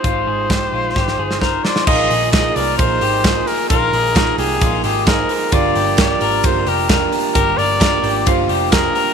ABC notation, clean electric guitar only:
X:1
M:4/4
L:1/8
Q:1/4=131
K:Bbmix
V:1 name="Clean electric guitar"
F A G F G A B c | F A A B2 G A2 | F A A G F G A B | F G G B2 G B2 |
G B B G F G A B |]